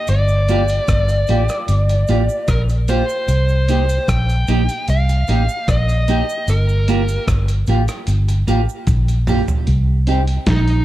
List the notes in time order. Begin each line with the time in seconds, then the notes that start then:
0.07 G1 D5, closed hi-hat, cabasa
0.28 cabasa
0.48 A#3 F4 G4, closed hi-hat, cabasa
0.68 closed hi-hat, cabasa
0.88 G1, kick, cross-stick, closed hi-hat, cabasa
1.09 closed hi-hat, cabasa
1.27 A1 A#3 F4 G4, closed hi-hat, cabasa
1.49 cross-stick, closed hi-hat, cabasa
1.68 G1, closed hi-hat, cabasa
1.89 muted clean electric guitar stroke, closed hi-hat, cabasa
2.07 A1 A#3 F4 G4, closed hi-hat, cabasa
2.29 cabasa
2.48 A#1 A#4, kick, cross-stick, closed hi-hat, cabasa
2.69 closed hi-hat, cabasa
2.88 A#3 F4 G4 C5, closed hi-hat, cabasa
3.09 cabasa
3.28 C2, closed hi-hat, cabasa
3.49 cabasa
3.69 A#3 D#4 G4, closed hi-hat, cabasa
3.89 closed hi-hat, cabasa
4.08 A#1 G5, kick, cross-stick, closed hi-hat, cabasa
4.29 closed hi-hat, cabasa
4.48 A#1 A#3 D#4 G4, closed hi-hat, cabasa
4.69 closed hi-hat, cabasa
4.88 C2 F5, closed hi-hat, cabasa
5.09 muted clean electric guitar stroke, closed hi-hat, cabasa
5.27 A1 A#3 D#4 G4, closed hi-hat, cabasa
5.49 cabasa
5.68 A#1 D#5, kick, cross-stick, closed hi-hat, cabasa
5.89 closed hi-hat, cabasa
6.08 A#3 D#4 G4, closed hi-hat, cabasa
6.29 cabasa
6.48 G1 A#4, closed hi-hat, cabasa
6.69 cabasa
6.88 A#3 F4 G4, closed hi-hat, cabasa
7.08 closed hi-hat, cabasa
7.28 G1, kick, cross-stick, closed hi-hat, cabasa
7.48 closed hi-hat, cabasa
7.67 A1 A#3 F4 G4, closed hi-hat, cabasa
7.88 cross-stick, closed hi-hat, cabasa
8.07 G1, closed hi-hat, cabasa
8.28 muted clean electric guitar stroke, closed hi-hat, cabasa
8.47 A1 A#3 F4 G4, closed hi-hat, cabasa
8.69 cabasa
8.87 A#1, kick, closed hi-hat, high tom, cabasa
9.08 closed hi-hat, cabasa
9.27 A#3 F4 G4, mid tom, open hi-hat, cabasa
9.48 floor tom, cabasa
9.67 C2, closed hi-hat
10.07 C4 D#4 G4, closed hi-hat
10.27 closed hi-hat
10.46 A#1 D#4, kick, snare, closed hi-hat
10.68 closed hi-hat